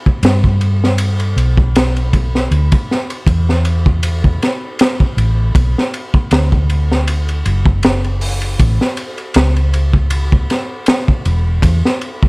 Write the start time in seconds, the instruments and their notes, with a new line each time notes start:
0.06 kick
0.23 fingered electric bass G2, snare, ride
0.44 kick
0.61 ride
0.84 snare
0.98 ride
1.20 ride
1.36 fingered electric bass B1, ride
1.57 kick
1.76 snare, ride
1.97 ride
2.13 kick, ride
2.35 snare
2.51 fingered electric bass D2, ride
2.72 kick, ride
2.91 snare
3.10 ride
3.27 fingered electric bass E2, kick, ride
3.49 snare
3.65 ride
3.86 kick
4.03 ride
4.24 kick
4.42 snare, ride
4.79 snare, ride
5.00 kick
5.17 fingered electric bass A1, ride
5.55 fingered electric bass B1, kick, ride
5.78 snare
5.94 ride
6.14 kick
6.31 fingered electric bass D2, snare, ride
6.52 kick
6.70 ride
6.92 snare
7.07 ride
7.29 ride
7.46 fingered electric bass F#1, ride
7.66 kick
7.83 snare, ride
8.04 ride
8.21 open hi-hat
8.42 ride
8.59 fingered electric bass A1, kick, ride
8.81 snare
8.97 ride
9.18 ride
9.34 fingered electric bass C#2, snare, ride
9.56 ride
9.73 ride
9.93 kick
10.10 ride
10.32 kick
10.50 snare, ride
10.86 snare, ride
11.08 kick
11.25 fingered electric bass E1, ride
11.62 fingered electric bass E2, kick, ride
11.85 snare
12.01 ride
12.23 kick